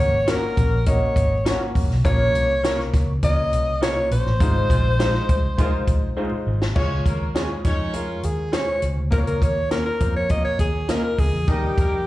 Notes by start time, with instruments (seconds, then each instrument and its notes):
Already playing: upright piano A#3 C#4 F#4 C#5, alto saxophone C#5
0.00 fingered electric bass G#1
0.27 upright piano A#3 C#4 F#4 C#5, clean electric guitar C#4 F#4 A#4 C#5, alto saxophone A#4, snare, closed hi-hat
0.57 fingered electric bass A#1, kick, closed hi-hat
0.86 upright piano A#3 C#4 F#4 D#5, alto saxophone C#5, kick, closed hi-hat
1.16 fingered electric bass G#1, kick, closed hi-hat
1.45 upright piano A#3 C#4 F#4 C#5, clean electric guitar C#4 F#4 A#4 C#5, snare, closed hi-hat
1.75 fingered electric bass F#1, kick, open hi-hat
1.90 fingered electric bass B1, snare
2.04 fingered electric bass A#1, upright piano A#3 C#4 F4 C#5, alto saxophone C#5, kick, closed hi-hat
2.34 fingered electric bass C2, closed hi-hat
2.63 upright piano A#3 C#4 F4 A#4, clean electric guitar C#4 F4 A#4 C#5, snare, closed hi-hat
2.80 snare
2.94 fingered electric bass C#2, kick, snare, closed hi-hat
3.23 upright piano A#3 C#4 F4 C#5, alto saxophone D#5, kick, closed hi-hat
3.52 fingered electric bass C2, closed hi-hat
3.81 upright piano A#3 C#4 F4 C#5, clean electric guitar C#4 F4 A#4 C#5, alto saxophone C#5, snare, closed hi-hat
4.11 fingered electric bass A#1, alto saxophone C5, closed hi-hat
4.26 fingered electric bass A1, snare
4.40 fingered electric bass G#1, upright piano G#3 D#4 F4 C5, kick, closed hi-hat
4.70 fingered electric bass A#1, horn section G#3 F4 C5, kick, closed hi-hat
4.99 upright piano G#3 D#4 F4 C5, clean electric guitar G#3 D#4 F4 C5, snare, closed hi-hat
5.15 snare
5.29 fingered electric bass C2, kick, closed hi-hat
5.57 upright piano G#3 D#4 F4 A#4, horn section G#3 F4 C5, kick, closed hi-hat
5.64 upright piano C5
5.87 fingered electric bass A#1, kick, closed hi-hat
6.17 upright piano G#3 D#4 F4 C5, clean electric guitar G#3 D#4 F4 C5
6.32 muted fingered electric bass stroke
6.47 fingered electric bass G#1
6.62 snare
6.75 fingered electric bass C#2, upright piano G#3 F4 C#5, horn section C#4 C#5, kick, crash
7.05 fingered electric bass D#2, horn section A#3 A#4, kick, closed hi-hat
7.34 upright piano G#3 F4 C#5, horn section G#3 G#4, clean electric guitar C#4 F4 G#4 C#5, snare, closed hi-hat
7.63 fingered electric bass F2, upright piano G#3 F4 C#5, horn section C#4 C#5, alto saxophone D#4, kick, snare, closed hi-hat
7.93 upright piano G#3 F4 A#4, alto saxophone F4, closed hi-hat
8.23 fingered electric bass D#2, alto saxophone G#4, closed hi-hat
8.52 upright piano G#3 F4 C5, clean electric guitar C#4 F4 G#4 C#5, alto saxophone C#5, snare, closed hi-hat
8.82 fingered electric bass C#2, closed hi-hat
8.97 fingered electric bass D2
9.11 upright piano A#3 F4 C5, alto saxophone A#4, kick, closed hi-hat
9.18 upright piano C#5
9.27 alto saxophone A#4, closed hi-hat
9.42 fingered electric bass D#2, alto saxophone C#5, kick, closed hi-hat
9.70 upright piano A#3 F4 C#5, clean electric guitar A#3 C#4 F4 A#4, alto saxophone A#4, snare, closed hi-hat
9.85 alto saxophone A#4
10.00 fingered electric bass F2, upright piano A#3 F4 C5, kick, closed hi-hat
10.16 alto saxophone C#5
10.29 upright piano A#3 F4 C#5, alto saxophone D#5, kick, closed hi-hat
10.44 alto saxophone C#5
10.59 fingered electric bass D#2, alto saxophone G#4, kick, closed hi-hat
10.88 clean electric guitar A#3 C#4 F4 A#4, upright piano A#3 F4 D#5, alto saxophone A#4, snare, closed hi-hat
11.03 alto saxophone A#4
11.18 fingered electric bass C#2, alto saxophone G#4, kick, open hi-hat
11.33 fingered electric bass E2
11.47 fingered electric bass D#2, upright piano G3 D#4 A#4, horn section D#4 D#5, alto saxophone G4, kick, closed hi-hat
11.77 fingered electric bass F2, horn section A#3 A#4, kick, closed hi-hat